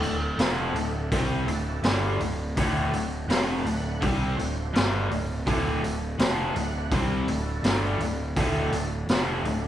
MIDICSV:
0, 0, Header, 1, 5, 480
1, 0, Start_track
1, 0, Tempo, 725514
1, 1695, Time_signature, 4, 2, 24, 8
1, 6402, End_track
2, 0, Start_track
2, 0, Title_t, "Tonewheel organ"
2, 0, Program_c, 0, 16
2, 0, Note_on_c, 0, 57, 76
2, 0, Note_on_c, 0, 62, 67
2, 0, Note_on_c, 0, 66, 67
2, 0, Note_on_c, 0, 69, 83
2, 117, Note_off_c, 0, 57, 0
2, 117, Note_off_c, 0, 69, 0
2, 118, Note_off_c, 0, 66, 0
2, 119, Note_off_c, 0, 62, 0
2, 238, Note_on_c, 0, 62, 71
2, 242, Note_on_c, 0, 57, 75
2, 243, Note_on_c, 0, 78, 67
2, 246, Note_on_c, 0, 69, 81
2, 767, Note_off_c, 0, 62, 0
2, 769, Note_off_c, 0, 57, 0
2, 770, Note_off_c, 0, 78, 0
2, 771, Note_off_c, 0, 69, 0
2, 966, Note_on_c, 0, 57, 67
2, 969, Note_on_c, 0, 62, 60
2, 971, Note_on_c, 0, 66, 62
2, 971, Note_on_c, 0, 69, 77
2, 1491, Note_off_c, 0, 57, 0
2, 1492, Note_off_c, 0, 62, 0
2, 1493, Note_off_c, 0, 66, 0
2, 1493, Note_off_c, 0, 69, 0
2, 1698, Note_on_c, 0, 66, 72
2, 1700, Note_on_c, 0, 57, 77
2, 1700, Note_on_c, 0, 62, 68
2, 1703, Note_on_c, 0, 69, 79
2, 2043, Note_off_c, 0, 66, 0
2, 2044, Note_off_c, 0, 57, 0
2, 2044, Note_off_c, 0, 62, 0
2, 2045, Note_off_c, 0, 69, 0
2, 2167, Note_on_c, 0, 62, 71
2, 2167, Note_on_c, 0, 78, 71
2, 2169, Note_on_c, 0, 57, 77
2, 2169, Note_on_c, 0, 71, 85
2, 2690, Note_off_c, 0, 62, 0
2, 2690, Note_off_c, 0, 78, 0
2, 2691, Note_off_c, 0, 57, 0
2, 2691, Note_off_c, 0, 71, 0
2, 2895, Note_on_c, 0, 66, 59
2, 2898, Note_on_c, 0, 72, 76
2, 2904, Note_on_c, 0, 57, 70
2, 2905, Note_on_c, 0, 62, 58
2, 3414, Note_off_c, 0, 66, 0
2, 3415, Note_off_c, 0, 72, 0
2, 3418, Note_off_c, 0, 57, 0
2, 3418, Note_off_c, 0, 62, 0
2, 3612, Note_on_c, 0, 66, 70
2, 3614, Note_on_c, 0, 69, 89
2, 3615, Note_on_c, 0, 57, 83
2, 3621, Note_on_c, 0, 62, 68
2, 3958, Note_off_c, 0, 66, 0
2, 3959, Note_off_c, 0, 69, 0
2, 3960, Note_off_c, 0, 57, 0
2, 3963, Note_off_c, 0, 62, 0
2, 4083, Note_on_c, 0, 62, 66
2, 4083, Note_on_c, 0, 71, 92
2, 4087, Note_on_c, 0, 78, 69
2, 4091, Note_on_c, 0, 57, 76
2, 4607, Note_off_c, 0, 62, 0
2, 4607, Note_off_c, 0, 71, 0
2, 4609, Note_off_c, 0, 78, 0
2, 4611, Note_off_c, 0, 57, 0
2, 4813, Note_on_c, 0, 57, 71
2, 4819, Note_on_c, 0, 62, 63
2, 4820, Note_on_c, 0, 66, 64
2, 4820, Note_on_c, 0, 69, 83
2, 5332, Note_off_c, 0, 57, 0
2, 5335, Note_off_c, 0, 62, 0
2, 5335, Note_off_c, 0, 69, 0
2, 5336, Note_off_c, 0, 66, 0
2, 5540, Note_on_c, 0, 69, 81
2, 5543, Note_on_c, 0, 57, 72
2, 5543, Note_on_c, 0, 66, 66
2, 5544, Note_on_c, 0, 62, 68
2, 5882, Note_off_c, 0, 69, 0
2, 5884, Note_off_c, 0, 57, 0
2, 5884, Note_off_c, 0, 62, 0
2, 5884, Note_off_c, 0, 66, 0
2, 6019, Note_on_c, 0, 57, 71
2, 6023, Note_on_c, 0, 62, 70
2, 6026, Note_on_c, 0, 78, 67
2, 6032, Note_on_c, 0, 69, 79
2, 6402, Note_off_c, 0, 57, 0
2, 6402, Note_off_c, 0, 62, 0
2, 6402, Note_off_c, 0, 69, 0
2, 6402, Note_off_c, 0, 78, 0
2, 6402, End_track
3, 0, Start_track
3, 0, Title_t, "Overdriven electric guitar"
3, 0, Program_c, 1, 29
3, 20, Note_on_c, 1, 38, 58
3, 23, Note_on_c, 1, 45, 69
3, 210, Note_off_c, 1, 38, 0
3, 211, Note_off_c, 1, 45, 0
3, 261, Note_on_c, 1, 48, 76
3, 262, Note_on_c, 1, 41, 79
3, 268, Note_on_c, 1, 53, 90
3, 491, Note_off_c, 1, 41, 0
3, 491, Note_off_c, 1, 48, 0
3, 494, Note_off_c, 1, 53, 0
3, 506, Note_on_c, 1, 38, 55
3, 508, Note_on_c, 1, 45, 58
3, 693, Note_off_c, 1, 38, 0
3, 694, Note_off_c, 1, 45, 0
3, 740, Note_on_c, 1, 48, 86
3, 745, Note_on_c, 1, 55, 96
3, 746, Note_on_c, 1, 60, 94
3, 970, Note_off_c, 1, 48, 0
3, 973, Note_off_c, 1, 55, 0
3, 974, Note_off_c, 1, 60, 0
3, 982, Note_on_c, 1, 38, 47
3, 984, Note_on_c, 1, 45, 61
3, 1171, Note_off_c, 1, 38, 0
3, 1172, Note_off_c, 1, 45, 0
3, 1215, Note_on_c, 1, 43, 72
3, 1217, Note_on_c, 1, 50, 81
3, 1223, Note_on_c, 1, 55, 89
3, 1448, Note_off_c, 1, 43, 0
3, 1449, Note_off_c, 1, 50, 0
3, 1452, Note_off_c, 1, 55, 0
3, 1465, Note_on_c, 1, 38, 61
3, 1467, Note_on_c, 1, 45, 67
3, 1652, Note_off_c, 1, 38, 0
3, 1653, Note_off_c, 1, 45, 0
3, 1700, Note_on_c, 1, 38, 85
3, 1704, Note_on_c, 1, 45, 82
3, 1709, Note_on_c, 1, 50, 96
3, 1930, Note_off_c, 1, 38, 0
3, 1932, Note_off_c, 1, 45, 0
3, 1935, Note_off_c, 1, 50, 0
3, 1942, Note_on_c, 1, 38, 54
3, 1945, Note_on_c, 1, 45, 63
3, 2130, Note_off_c, 1, 38, 0
3, 2131, Note_off_c, 1, 45, 0
3, 2177, Note_on_c, 1, 41, 71
3, 2181, Note_on_c, 1, 48, 82
3, 2184, Note_on_c, 1, 53, 86
3, 2408, Note_off_c, 1, 41, 0
3, 2410, Note_off_c, 1, 48, 0
3, 2411, Note_off_c, 1, 53, 0
3, 2420, Note_on_c, 1, 38, 58
3, 2423, Note_on_c, 1, 45, 63
3, 2609, Note_off_c, 1, 38, 0
3, 2610, Note_off_c, 1, 45, 0
3, 2652, Note_on_c, 1, 48, 85
3, 2654, Note_on_c, 1, 55, 92
3, 2660, Note_on_c, 1, 60, 91
3, 2885, Note_off_c, 1, 48, 0
3, 2886, Note_off_c, 1, 55, 0
3, 2889, Note_off_c, 1, 60, 0
3, 2895, Note_on_c, 1, 38, 49
3, 2896, Note_on_c, 1, 45, 61
3, 3086, Note_off_c, 1, 38, 0
3, 3087, Note_off_c, 1, 45, 0
3, 3133, Note_on_c, 1, 50, 79
3, 3134, Note_on_c, 1, 43, 82
3, 3139, Note_on_c, 1, 55, 82
3, 3366, Note_off_c, 1, 43, 0
3, 3366, Note_off_c, 1, 50, 0
3, 3368, Note_off_c, 1, 55, 0
3, 3377, Note_on_c, 1, 38, 62
3, 3377, Note_on_c, 1, 45, 64
3, 3567, Note_off_c, 1, 38, 0
3, 3567, Note_off_c, 1, 45, 0
3, 3615, Note_on_c, 1, 45, 82
3, 3616, Note_on_c, 1, 38, 75
3, 3618, Note_on_c, 1, 50, 98
3, 3846, Note_off_c, 1, 38, 0
3, 3846, Note_off_c, 1, 45, 0
3, 3847, Note_off_c, 1, 50, 0
3, 3861, Note_on_c, 1, 38, 60
3, 3862, Note_on_c, 1, 45, 61
3, 4048, Note_off_c, 1, 38, 0
3, 4049, Note_off_c, 1, 45, 0
3, 4094, Note_on_c, 1, 41, 81
3, 4095, Note_on_c, 1, 48, 92
3, 4099, Note_on_c, 1, 53, 83
3, 4325, Note_off_c, 1, 41, 0
3, 4326, Note_off_c, 1, 48, 0
3, 4328, Note_off_c, 1, 53, 0
3, 4341, Note_on_c, 1, 45, 67
3, 4342, Note_on_c, 1, 38, 58
3, 4528, Note_off_c, 1, 45, 0
3, 4529, Note_off_c, 1, 38, 0
3, 4580, Note_on_c, 1, 48, 98
3, 4585, Note_on_c, 1, 55, 98
3, 4586, Note_on_c, 1, 60, 98
3, 4808, Note_off_c, 1, 48, 0
3, 4811, Note_off_c, 1, 55, 0
3, 4811, Note_off_c, 1, 60, 0
3, 4823, Note_on_c, 1, 38, 50
3, 4827, Note_on_c, 1, 45, 56
3, 5009, Note_off_c, 1, 38, 0
3, 5011, Note_off_c, 1, 45, 0
3, 5057, Note_on_c, 1, 43, 72
3, 5062, Note_on_c, 1, 50, 85
3, 5065, Note_on_c, 1, 55, 80
3, 5287, Note_off_c, 1, 43, 0
3, 5289, Note_off_c, 1, 50, 0
3, 5290, Note_off_c, 1, 55, 0
3, 5298, Note_on_c, 1, 38, 58
3, 5303, Note_on_c, 1, 45, 66
3, 5486, Note_off_c, 1, 38, 0
3, 5489, Note_off_c, 1, 45, 0
3, 5537, Note_on_c, 1, 38, 78
3, 5541, Note_on_c, 1, 45, 83
3, 5546, Note_on_c, 1, 50, 84
3, 5767, Note_off_c, 1, 38, 0
3, 5769, Note_off_c, 1, 45, 0
3, 5771, Note_off_c, 1, 50, 0
3, 5781, Note_on_c, 1, 38, 58
3, 5781, Note_on_c, 1, 45, 65
3, 5968, Note_off_c, 1, 38, 0
3, 5968, Note_off_c, 1, 45, 0
3, 6024, Note_on_c, 1, 41, 81
3, 6029, Note_on_c, 1, 48, 76
3, 6029, Note_on_c, 1, 53, 79
3, 6250, Note_off_c, 1, 41, 0
3, 6253, Note_off_c, 1, 48, 0
3, 6253, Note_off_c, 1, 53, 0
3, 6260, Note_on_c, 1, 38, 56
3, 6261, Note_on_c, 1, 45, 62
3, 6402, Note_off_c, 1, 38, 0
3, 6402, Note_off_c, 1, 45, 0
3, 6402, End_track
4, 0, Start_track
4, 0, Title_t, "Picked electric bass"
4, 0, Program_c, 2, 34
4, 10, Note_on_c, 2, 26, 61
4, 236, Note_off_c, 2, 26, 0
4, 245, Note_on_c, 2, 29, 80
4, 473, Note_off_c, 2, 29, 0
4, 491, Note_on_c, 2, 26, 75
4, 716, Note_off_c, 2, 26, 0
4, 737, Note_on_c, 2, 36, 81
4, 960, Note_off_c, 2, 36, 0
4, 970, Note_on_c, 2, 26, 64
4, 1195, Note_off_c, 2, 26, 0
4, 1207, Note_on_c, 2, 31, 89
4, 1434, Note_off_c, 2, 31, 0
4, 1455, Note_on_c, 2, 26, 76
4, 1678, Note_off_c, 2, 26, 0
4, 1701, Note_on_c, 2, 26, 95
4, 1921, Note_off_c, 2, 26, 0
4, 1933, Note_on_c, 2, 26, 64
4, 2157, Note_off_c, 2, 26, 0
4, 2169, Note_on_c, 2, 29, 81
4, 2394, Note_off_c, 2, 29, 0
4, 2414, Note_on_c, 2, 26, 74
4, 2637, Note_off_c, 2, 26, 0
4, 2661, Note_on_c, 2, 36, 93
4, 2881, Note_off_c, 2, 36, 0
4, 2898, Note_on_c, 2, 26, 72
4, 3119, Note_off_c, 2, 26, 0
4, 3132, Note_on_c, 2, 31, 88
4, 3355, Note_off_c, 2, 31, 0
4, 3377, Note_on_c, 2, 26, 67
4, 3598, Note_off_c, 2, 26, 0
4, 3618, Note_on_c, 2, 26, 92
4, 3838, Note_off_c, 2, 26, 0
4, 3855, Note_on_c, 2, 26, 68
4, 4076, Note_off_c, 2, 26, 0
4, 4094, Note_on_c, 2, 29, 87
4, 4316, Note_off_c, 2, 29, 0
4, 4328, Note_on_c, 2, 26, 79
4, 4553, Note_off_c, 2, 26, 0
4, 4572, Note_on_c, 2, 36, 88
4, 4794, Note_off_c, 2, 36, 0
4, 4811, Note_on_c, 2, 26, 72
4, 5034, Note_off_c, 2, 26, 0
4, 5048, Note_on_c, 2, 31, 96
4, 5273, Note_off_c, 2, 31, 0
4, 5283, Note_on_c, 2, 26, 70
4, 5510, Note_off_c, 2, 26, 0
4, 5534, Note_on_c, 2, 26, 91
4, 5756, Note_off_c, 2, 26, 0
4, 5764, Note_on_c, 2, 26, 67
4, 5991, Note_off_c, 2, 26, 0
4, 6005, Note_on_c, 2, 29, 79
4, 6231, Note_off_c, 2, 29, 0
4, 6244, Note_on_c, 2, 26, 72
4, 6402, Note_off_c, 2, 26, 0
4, 6402, End_track
5, 0, Start_track
5, 0, Title_t, "Drums"
5, 20, Note_on_c, 9, 46, 46
5, 86, Note_off_c, 9, 46, 0
5, 257, Note_on_c, 9, 46, 64
5, 262, Note_on_c, 9, 38, 101
5, 323, Note_off_c, 9, 46, 0
5, 329, Note_off_c, 9, 38, 0
5, 500, Note_on_c, 9, 46, 47
5, 566, Note_off_c, 9, 46, 0
5, 739, Note_on_c, 9, 36, 87
5, 739, Note_on_c, 9, 46, 66
5, 806, Note_off_c, 9, 36, 0
5, 806, Note_off_c, 9, 46, 0
5, 979, Note_on_c, 9, 46, 45
5, 1045, Note_off_c, 9, 46, 0
5, 1214, Note_on_c, 9, 46, 66
5, 1220, Note_on_c, 9, 38, 97
5, 1281, Note_off_c, 9, 46, 0
5, 1286, Note_off_c, 9, 38, 0
5, 1459, Note_on_c, 9, 46, 49
5, 1525, Note_off_c, 9, 46, 0
5, 1701, Note_on_c, 9, 36, 98
5, 1701, Note_on_c, 9, 46, 69
5, 1767, Note_off_c, 9, 46, 0
5, 1768, Note_off_c, 9, 36, 0
5, 1941, Note_on_c, 9, 46, 44
5, 2007, Note_off_c, 9, 46, 0
5, 2182, Note_on_c, 9, 46, 61
5, 2187, Note_on_c, 9, 38, 95
5, 2248, Note_off_c, 9, 46, 0
5, 2253, Note_off_c, 9, 38, 0
5, 2425, Note_on_c, 9, 46, 45
5, 2491, Note_off_c, 9, 46, 0
5, 2660, Note_on_c, 9, 36, 93
5, 2663, Note_on_c, 9, 46, 54
5, 2727, Note_off_c, 9, 36, 0
5, 2729, Note_off_c, 9, 46, 0
5, 2906, Note_on_c, 9, 46, 42
5, 2973, Note_off_c, 9, 46, 0
5, 3145, Note_on_c, 9, 46, 56
5, 3151, Note_on_c, 9, 38, 110
5, 3211, Note_off_c, 9, 46, 0
5, 3217, Note_off_c, 9, 38, 0
5, 3383, Note_on_c, 9, 46, 45
5, 3449, Note_off_c, 9, 46, 0
5, 3619, Note_on_c, 9, 36, 96
5, 3623, Note_on_c, 9, 46, 61
5, 3685, Note_off_c, 9, 36, 0
5, 3689, Note_off_c, 9, 46, 0
5, 3864, Note_on_c, 9, 46, 46
5, 3930, Note_off_c, 9, 46, 0
5, 4097, Note_on_c, 9, 46, 67
5, 4102, Note_on_c, 9, 38, 108
5, 4163, Note_off_c, 9, 46, 0
5, 4169, Note_off_c, 9, 38, 0
5, 4338, Note_on_c, 9, 46, 49
5, 4404, Note_off_c, 9, 46, 0
5, 4575, Note_on_c, 9, 36, 91
5, 4576, Note_on_c, 9, 46, 63
5, 4642, Note_off_c, 9, 36, 0
5, 4642, Note_off_c, 9, 46, 0
5, 4816, Note_on_c, 9, 46, 46
5, 4882, Note_off_c, 9, 46, 0
5, 5054, Note_on_c, 9, 46, 67
5, 5059, Note_on_c, 9, 38, 95
5, 5120, Note_off_c, 9, 46, 0
5, 5126, Note_off_c, 9, 38, 0
5, 5296, Note_on_c, 9, 46, 53
5, 5362, Note_off_c, 9, 46, 0
5, 5534, Note_on_c, 9, 36, 93
5, 5534, Note_on_c, 9, 46, 68
5, 5600, Note_off_c, 9, 36, 0
5, 5600, Note_off_c, 9, 46, 0
5, 5772, Note_on_c, 9, 46, 48
5, 5838, Note_off_c, 9, 46, 0
5, 6012, Note_on_c, 9, 46, 60
5, 6018, Note_on_c, 9, 38, 102
5, 6078, Note_off_c, 9, 46, 0
5, 6084, Note_off_c, 9, 38, 0
5, 6254, Note_on_c, 9, 46, 44
5, 6320, Note_off_c, 9, 46, 0
5, 6402, End_track
0, 0, End_of_file